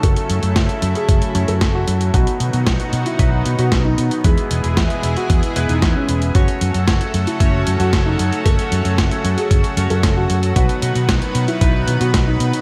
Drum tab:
HH |xxxxxxxxxxxxx-xx|xxxxxxxxx-xxx-xx|xxxxxxxxxxxxx-xx|xxxxxxxxx-xxx-xx|
SD |----o-------o---|----o-------o---|----o-------o---|----o-------o---|
BD |o---o---o---o---|o---o---o---o---|o---o---o---o---|o---o---o---o---|

HH |xxxxxxxxxxxxx-xx|xxxxxxxxx-xxx-xx|
SD |----o-------o---|----o-------o---|
BD |o---o---o---o---|o---o---o---o---|